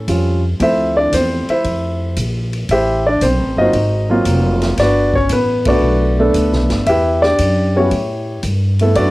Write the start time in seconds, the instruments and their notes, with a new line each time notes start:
Already playing: grand piano A4
0.08 upright bass F2, grand piano F3 G3 C#4 F4, kick, hi-hat pedal, ride
0.60 upright bass D2, grand piano F3 A3 C4 E4 A4 C5 E5, kick, ride
0.97 grand piano D4 D5
1.12 upright bass E2, grand piano C4 C5, kick, hi-hat pedal, ride
1.48 grand piano E4 C5 E5, muted upright bass stroke, ride
1.64 upright bass F2, kick, ride
2.16 upright bass A#1, kick, hi-hat pedal, ride
2.53 ride
2.69 upright bass A1, grand piano E4 G4 C5 E5, kick, ride
3.06 grand piano D4 D5
3.21 upright bass B1, grand piano C4 C5, kick, hi-hat pedal, ride
3.39 upright bass A1
3.57 upright bass G1, grand piano F#3 A#3 C4 D#4 F4 D#5
3.61 grand piano F#4 C5
3.73 upright bass G#1, kick, ride
4.10 grand piano F#3 A#3 C4 F4
4.25 upright bass F1, kick, hi-hat pedal, ride
4.62 snare, ride
4.77 upright bass G1, grand piano D4 F#4 D5, kick, snare, ride
4.81 grand piano B4
5.14 grand piano C#4 C#5, kick
5.29 upright bass A1, grand piano B4, kick, hi-hat pedal, ride
5.33 grand piano B3
5.65 grand piano A3 B3 D4 F#4 B4 D5, kick, ride
5.82 upright bass B1
6.19 grand piano A3 B3 D4 A4
6.34 upright bass D2, kick, hi-hat pedal, ride
6.52 upright bass B1, snare
6.69 upright bass G1, snare, ride
6.86 upright bass E2, grand piano E4 G4 B4 E5, kick, ride
7.22 grand piano D4 G4 D5, snare
7.38 upright bass F#2, kick, hi-hat pedal, ride
7.75 grand piano G3 B3 C#4 E4 F#4 G4 C#5
7.91 upright bass A2, kick, ride
8.43 upright bass G2, kick, hi-hat pedal, ride
8.79 grand piano A3 B3 E4 A4, ride
8.95 upright bass F#2, grand piano D4 F#4 B4 D5, kick, ride